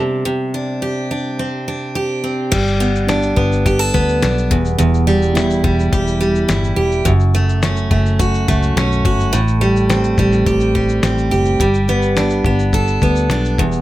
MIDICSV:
0, 0, Header, 1, 4, 480
1, 0, Start_track
1, 0, Tempo, 567644
1, 211, Time_signature, 4, 2, 24, 8
1, 11681, End_track
2, 0, Start_track
2, 0, Title_t, "Steel-string acoustic guitar"
2, 0, Program_c, 0, 25
2, 0, Note_on_c, 0, 48, 59
2, 0, Note_on_c, 0, 55, 65
2, 0, Note_on_c, 0, 62, 49
2, 203, Note_off_c, 0, 48, 0
2, 214, Note_on_c, 0, 48, 63
2, 239, Note_off_c, 0, 62, 0
2, 457, Note_on_c, 0, 62, 50
2, 693, Note_on_c, 0, 67, 51
2, 934, Note_off_c, 0, 62, 0
2, 938, Note_on_c, 0, 62, 48
2, 1178, Note_on_c, 0, 60, 47
2, 1250, Note_off_c, 0, 55, 0
2, 1416, Note_off_c, 0, 62, 0
2, 1419, Note_on_c, 0, 62, 49
2, 1648, Note_off_c, 0, 67, 0
2, 1651, Note_on_c, 0, 67, 53
2, 1881, Note_off_c, 0, 60, 0
2, 1891, Note_on_c, 0, 60, 45
2, 2127, Note_on_c, 0, 55, 75
2, 2134, Note_off_c, 0, 48, 0
2, 2180, Note_off_c, 0, 60, 0
2, 2184, Note_off_c, 0, 62, 0
2, 2370, Note_on_c, 0, 59, 60
2, 2608, Note_on_c, 0, 62, 56
2, 2841, Note_off_c, 0, 59, 0
2, 2844, Note_on_c, 0, 59, 57
2, 3090, Note_off_c, 0, 67, 0
2, 3093, Note_on_c, 0, 67, 67
2, 3206, Note_off_c, 0, 67, 0
2, 3206, Note_on_c, 0, 69, 53
2, 3328, Note_off_c, 0, 59, 0
2, 3331, Note_on_c, 0, 59, 55
2, 3563, Note_off_c, 0, 62, 0
2, 3573, Note_on_c, 0, 62, 59
2, 3812, Note_on_c, 0, 40, 68
2, 3858, Note_off_c, 0, 69, 0
2, 3861, Note_off_c, 0, 62, 0
2, 4036, Note_off_c, 0, 40, 0
2, 4046, Note_on_c, 0, 40, 76
2, 4284, Note_off_c, 0, 59, 0
2, 4288, Note_off_c, 0, 55, 0
2, 4288, Note_on_c, 0, 55, 60
2, 4525, Note_on_c, 0, 64, 58
2, 4758, Note_off_c, 0, 55, 0
2, 4768, Note_on_c, 0, 55, 58
2, 5011, Note_on_c, 0, 67, 64
2, 5237, Note_off_c, 0, 55, 0
2, 5247, Note_on_c, 0, 55, 59
2, 5473, Note_off_c, 0, 64, 0
2, 5483, Note_on_c, 0, 64, 61
2, 5709, Note_off_c, 0, 67, 0
2, 5719, Note_on_c, 0, 67, 63
2, 5959, Note_off_c, 0, 40, 0
2, 5962, Note_on_c, 0, 42, 80
2, 6014, Note_off_c, 0, 67, 0
2, 6016, Note_off_c, 0, 64, 0
2, 6018, Note_off_c, 0, 55, 0
2, 6212, Note_on_c, 0, 57, 60
2, 6456, Note_on_c, 0, 61, 58
2, 6684, Note_off_c, 0, 57, 0
2, 6688, Note_on_c, 0, 57, 58
2, 6929, Note_on_c, 0, 66, 65
2, 7170, Note_off_c, 0, 57, 0
2, 7173, Note_on_c, 0, 57, 55
2, 7405, Note_off_c, 0, 61, 0
2, 7416, Note_on_c, 0, 61, 62
2, 7645, Note_off_c, 0, 66, 0
2, 7655, Note_on_c, 0, 66, 61
2, 7886, Note_on_c, 0, 45, 79
2, 7888, Note_off_c, 0, 42, 0
2, 7942, Note_off_c, 0, 61, 0
2, 7942, Note_off_c, 0, 66, 0
2, 8124, Note_off_c, 0, 57, 0
2, 8127, Note_on_c, 0, 55, 60
2, 8367, Note_on_c, 0, 60, 55
2, 8612, Note_off_c, 0, 55, 0
2, 8615, Note_on_c, 0, 55, 54
2, 8849, Note_on_c, 0, 67, 62
2, 9086, Note_off_c, 0, 55, 0
2, 9090, Note_on_c, 0, 55, 53
2, 9318, Note_off_c, 0, 60, 0
2, 9328, Note_on_c, 0, 60, 59
2, 9563, Note_off_c, 0, 67, 0
2, 9566, Note_on_c, 0, 67, 58
2, 9809, Note_off_c, 0, 45, 0
2, 9813, Note_off_c, 0, 55, 0
2, 9813, Note_on_c, 0, 55, 73
2, 9858, Note_off_c, 0, 60, 0
2, 10053, Note_on_c, 0, 59, 62
2, 10294, Note_on_c, 0, 62, 53
2, 10530, Note_off_c, 0, 59, 0
2, 10533, Note_on_c, 0, 59, 56
2, 10769, Note_off_c, 0, 67, 0
2, 10773, Note_on_c, 0, 69, 63
2, 11012, Note_off_c, 0, 59, 0
2, 11016, Note_on_c, 0, 59, 52
2, 11244, Note_off_c, 0, 62, 0
2, 11254, Note_on_c, 0, 62, 62
2, 11493, Note_on_c, 0, 40, 73
2, 11539, Note_off_c, 0, 69, 0
2, 11540, Note_off_c, 0, 62, 0
2, 11681, Note_off_c, 0, 40, 0
2, 11681, Note_off_c, 0, 55, 0
2, 11681, Note_off_c, 0, 59, 0
2, 11681, End_track
3, 0, Start_track
3, 0, Title_t, "Fingered electric bass"
3, 0, Program_c, 1, 33
3, 2131, Note_on_c, 1, 31, 89
3, 2819, Note_off_c, 1, 31, 0
3, 2849, Note_on_c, 1, 31, 86
3, 3298, Note_off_c, 1, 31, 0
3, 3337, Note_on_c, 1, 38, 78
3, 3557, Note_off_c, 1, 38, 0
3, 3576, Note_on_c, 1, 35, 85
3, 3796, Note_off_c, 1, 35, 0
3, 3815, Note_on_c, 1, 28, 84
3, 4035, Note_off_c, 1, 28, 0
3, 4057, Note_on_c, 1, 28, 95
3, 4741, Note_off_c, 1, 28, 0
3, 4769, Note_on_c, 1, 28, 103
3, 4992, Note_off_c, 1, 28, 0
3, 5011, Note_on_c, 1, 28, 92
3, 5459, Note_off_c, 1, 28, 0
3, 5486, Note_on_c, 1, 31, 86
3, 5710, Note_off_c, 1, 31, 0
3, 5725, Note_on_c, 1, 28, 81
3, 5950, Note_off_c, 1, 28, 0
3, 5965, Note_on_c, 1, 30, 103
3, 6655, Note_off_c, 1, 30, 0
3, 6688, Note_on_c, 1, 30, 104
3, 7137, Note_off_c, 1, 30, 0
3, 7176, Note_on_c, 1, 37, 87
3, 7395, Note_off_c, 1, 37, 0
3, 7411, Note_on_c, 1, 35, 97
3, 7633, Note_off_c, 1, 35, 0
3, 7651, Note_on_c, 1, 31, 85
3, 7873, Note_off_c, 1, 31, 0
3, 7890, Note_on_c, 1, 33, 98
3, 8577, Note_off_c, 1, 33, 0
3, 8607, Note_on_c, 1, 33, 86
3, 8831, Note_off_c, 1, 33, 0
3, 8848, Note_on_c, 1, 33, 93
3, 9296, Note_off_c, 1, 33, 0
3, 9328, Note_on_c, 1, 33, 87
3, 9551, Note_off_c, 1, 33, 0
3, 9568, Note_on_c, 1, 30, 80
3, 9790, Note_off_c, 1, 30, 0
3, 9805, Note_on_c, 1, 31, 90
3, 10494, Note_off_c, 1, 31, 0
3, 10521, Note_on_c, 1, 31, 95
3, 10971, Note_off_c, 1, 31, 0
3, 11009, Note_on_c, 1, 38, 86
3, 11231, Note_off_c, 1, 38, 0
3, 11240, Note_on_c, 1, 35, 85
3, 11465, Note_off_c, 1, 35, 0
3, 11488, Note_on_c, 1, 28, 90
3, 11681, Note_off_c, 1, 28, 0
3, 11681, End_track
4, 0, Start_track
4, 0, Title_t, "Drums"
4, 2131, Note_on_c, 9, 49, 88
4, 2131, Note_on_c, 9, 82, 74
4, 2134, Note_on_c, 9, 36, 95
4, 2215, Note_off_c, 9, 49, 0
4, 2216, Note_off_c, 9, 82, 0
4, 2218, Note_off_c, 9, 36, 0
4, 2257, Note_on_c, 9, 82, 39
4, 2341, Note_off_c, 9, 82, 0
4, 2377, Note_on_c, 9, 82, 43
4, 2461, Note_off_c, 9, 82, 0
4, 2498, Note_on_c, 9, 82, 49
4, 2582, Note_off_c, 9, 82, 0
4, 2613, Note_on_c, 9, 82, 66
4, 2614, Note_on_c, 9, 38, 99
4, 2698, Note_off_c, 9, 82, 0
4, 2699, Note_off_c, 9, 38, 0
4, 2727, Note_on_c, 9, 82, 53
4, 2812, Note_off_c, 9, 82, 0
4, 2851, Note_on_c, 9, 36, 84
4, 2935, Note_off_c, 9, 36, 0
4, 2978, Note_on_c, 9, 82, 43
4, 3062, Note_off_c, 9, 82, 0
4, 3092, Note_on_c, 9, 36, 99
4, 3097, Note_on_c, 9, 82, 70
4, 3177, Note_off_c, 9, 36, 0
4, 3181, Note_off_c, 9, 82, 0
4, 3214, Note_on_c, 9, 82, 50
4, 3298, Note_off_c, 9, 82, 0
4, 3336, Note_on_c, 9, 36, 85
4, 3340, Note_on_c, 9, 82, 46
4, 3421, Note_off_c, 9, 36, 0
4, 3425, Note_off_c, 9, 82, 0
4, 3456, Note_on_c, 9, 82, 52
4, 3541, Note_off_c, 9, 82, 0
4, 3572, Note_on_c, 9, 38, 101
4, 3573, Note_on_c, 9, 82, 67
4, 3657, Note_off_c, 9, 38, 0
4, 3658, Note_off_c, 9, 82, 0
4, 3704, Note_on_c, 9, 82, 50
4, 3788, Note_off_c, 9, 82, 0
4, 3814, Note_on_c, 9, 36, 91
4, 3899, Note_off_c, 9, 36, 0
4, 3934, Note_on_c, 9, 82, 46
4, 4018, Note_off_c, 9, 82, 0
4, 4054, Note_on_c, 9, 82, 76
4, 4139, Note_off_c, 9, 82, 0
4, 4180, Note_on_c, 9, 82, 38
4, 4264, Note_off_c, 9, 82, 0
4, 4300, Note_on_c, 9, 82, 44
4, 4384, Note_off_c, 9, 82, 0
4, 4415, Note_on_c, 9, 82, 47
4, 4500, Note_off_c, 9, 82, 0
4, 4540, Note_on_c, 9, 82, 67
4, 4541, Note_on_c, 9, 38, 100
4, 4624, Note_off_c, 9, 82, 0
4, 4625, Note_off_c, 9, 38, 0
4, 4653, Note_on_c, 9, 82, 56
4, 4738, Note_off_c, 9, 82, 0
4, 4771, Note_on_c, 9, 36, 83
4, 4855, Note_off_c, 9, 36, 0
4, 4901, Note_on_c, 9, 82, 45
4, 4985, Note_off_c, 9, 82, 0
4, 5011, Note_on_c, 9, 36, 101
4, 5016, Note_on_c, 9, 82, 70
4, 5096, Note_off_c, 9, 36, 0
4, 5100, Note_off_c, 9, 82, 0
4, 5133, Note_on_c, 9, 82, 53
4, 5218, Note_off_c, 9, 82, 0
4, 5255, Note_on_c, 9, 82, 50
4, 5339, Note_off_c, 9, 82, 0
4, 5373, Note_on_c, 9, 82, 51
4, 5458, Note_off_c, 9, 82, 0
4, 5486, Note_on_c, 9, 38, 111
4, 5487, Note_on_c, 9, 82, 67
4, 5571, Note_off_c, 9, 38, 0
4, 5572, Note_off_c, 9, 82, 0
4, 5617, Note_on_c, 9, 82, 50
4, 5701, Note_off_c, 9, 82, 0
4, 5848, Note_on_c, 9, 82, 48
4, 5933, Note_off_c, 9, 82, 0
4, 5966, Note_on_c, 9, 82, 76
4, 5968, Note_on_c, 9, 36, 101
4, 6051, Note_off_c, 9, 82, 0
4, 6053, Note_off_c, 9, 36, 0
4, 6088, Note_on_c, 9, 82, 37
4, 6172, Note_off_c, 9, 82, 0
4, 6210, Note_on_c, 9, 82, 43
4, 6295, Note_off_c, 9, 82, 0
4, 6334, Note_on_c, 9, 82, 50
4, 6419, Note_off_c, 9, 82, 0
4, 6448, Note_on_c, 9, 82, 66
4, 6449, Note_on_c, 9, 38, 107
4, 6533, Note_off_c, 9, 82, 0
4, 6534, Note_off_c, 9, 38, 0
4, 6566, Note_on_c, 9, 82, 54
4, 6650, Note_off_c, 9, 82, 0
4, 6687, Note_on_c, 9, 36, 83
4, 6771, Note_off_c, 9, 36, 0
4, 6815, Note_on_c, 9, 82, 45
4, 6899, Note_off_c, 9, 82, 0
4, 6929, Note_on_c, 9, 36, 102
4, 6932, Note_on_c, 9, 82, 69
4, 7014, Note_off_c, 9, 36, 0
4, 7017, Note_off_c, 9, 82, 0
4, 7055, Note_on_c, 9, 82, 49
4, 7140, Note_off_c, 9, 82, 0
4, 7174, Note_on_c, 9, 36, 88
4, 7175, Note_on_c, 9, 82, 49
4, 7258, Note_off_c, 9, 36, 0
4, 7260, Note_off_c, 9, 82, 0
4, 7295, Note_on_c, 9, 82, 56
4, 7380, Note_off_c, 9, 82, 0
4, 7417, Note_on_c, 9, 38, 104
4, 7418, Note_on_c, 9, 82, 62
4, 7501, Note_off_c, 9, 38, 0
4, 7502, Note_off_c, 9, 82, 0
4, 7544, Note_on_c, 9, 82, 48
4, 7628, Note_off_c, 9, 82, 0
4, 7652, Note_on_c, 9, 36, 91
4, 7736, Note_off_c, 9, 36, 0
4, 7777, Note_on_c, 9, 82, 45
4, 7861, Note_off_c, 9, 82, 0
4, 7895, Note_on_c, 9, 82, 77
4, 7980, Note_off_c, 9, 82, 0
4, 8015, Note_on_c, 9, 82, 40
4, 8099, Note_off_c, 9, 82, 0
4, 8134, Note_on_c, 9, 82, 45
4, 8219, Note_off_c, 9, 82, 0
4, 8255, Note_on_c, 9, 82, 47
4, 8339, Note_off_c, 9, 82, 0
4, 8371, Note_on_c, 9, 82, 70
4, 8372, Note_on_c, 9, 38, 98
4, 8456, Note_off_c, 9, 82, 0
4, 8457, Note_off_c, 9, 38, 0
4, 8488, Note_on_c, 9, 82, 57
4, 8573, Note_off_c, 9, 82, 0
4, 8606, Note_on_c, 9, 82, 50
4, 8607, Note_on_c, 9, 36, 87
4, 8690, Note_off_c, 9, 82, 0
4, 8692, Note_off_c, 9, 36, 0
4, 8724, Note_on_c, 9, 38, 29
4, 8730, Note_on_c, 9, 82, 45
4, 8809, Note_off_c, 9, 38, 0
4, 8815, Note_off_c, 9, 82, 0
4, 8849, Note_on_c, 9, 36, 99
4, 8854, Note_on_c, 9, 82, 67
4, 8933, Note_off_c, 9, 36, 0
4, 8938, Note_off_c, 9, 82, 0
4, 8965, Note_on_c, 9, 82, 47
4, 9050, Note_off_c, 9, 82, 0
4, 9091, Note_on_c, 9, 36, 82
4, 9175, Note_off_c, 9, 36, 0
4, 9209, Note_on_c, 9, 82, 54
4, 9294, Note_off_c, 9, 82, 0
4, 9326, Note_on_c, 9, 38, 100
4, 9327, Note_on_c, 9, 82, 65
4, 9411, Note_off_c, 9, 38, 0
4, 9412, Note_off_c, 9, 82, 0
4, 9456, Note_on_c, 9, 82, 49
4, 9541, Note_off_c, 9, 82, 0
4, 9570, Note_on_c, 9, 82, 46
4, 9655, Note_off_c, 9, 82, 0
4, 9684, Note_on_c, 9, 82, 45
4, 9768, Note_off_c, 9, 82, 0
4, 9808, Note_on_c, 9, 36, 104
4, 9809, Note_on_c, 9, 82, 75
4, 9893, Note_off_c, 9, 36, 0
4, 9893, Note_off_c, 9, 82, 0
4, 9929, Note_on_c, 9, 82, 40
4, 10013, Note_off_c, 9, 82, 0
4, 10048, Note_on_c, 9, 82, 45
4, 10133, Note_off_c, 9, 82, 0
4, 10165, Note_on_c, 9, 82, 48
4, 10250, Note_off_c, 9, 82, 0
4, 10287, Note_on_c, 9, 82, 67
4, 10288, Note_on_c, 9, 38, 105
4, 10371, Note_off_c, 9, 82, 0
4, 10372, Note_off_c, 9, 38, 0
4, 10401, Note_on_c, 9, 82, 58
4, 10485, Note_off_c, 9, 82, 0
4, 10524, Note_on_c, 9, 36, 87
4, 10608, Note_off_c, 9, 36, 0
4, 10648, Note_on_c, 9, 82, 48
4, 10732, Note_off_c, 9, 82, 0
4, 10765, Note_on_c, 9, 36, 98
4, 10766, Note_on_c, 9, 82, 68
4, 10849, Note_off_c, 9, 36, 0
4, 10850, Note_off_c, 9, 82, 0
4, 10887, Note_on_c, 9, 82, 49
4, 10972, Note_off_c, 9, 82, 0
4, 11004, Note_on_c, 9, 82, 48
4, 11009, Note_on_c, 9, 36, 86
4, 11089, Note_off_c, 9, 82, 0
4, 11093, Note_off_c, 9, 36, 0
4, 11126, Note_on_c, 9, 82, 52
4, 11211, Note_off_c, 9, 82, 0
4, 11244, Note_on_c, 9, 38, 109
4, 11245, Note_on_c, 9, 82, 63
4, 11328, Note_off_c, 9, 38, 0
4, 11329, Note_off_c, 9, 82, 0
4, 11373, Note_on_c, 9, 82, 52
4, 11458, Note_off_c, 9, 82, 0
4, 11487, Note_on_c, 9, 36, 99
4, 11571, Note_off_c, 9, 36, 0
4, 11601, Note_on_c, 9, 82, 44
4, 11681, Note_off_c, 9, 82, 0
4, 11681, End_track
0, 0, End_of_file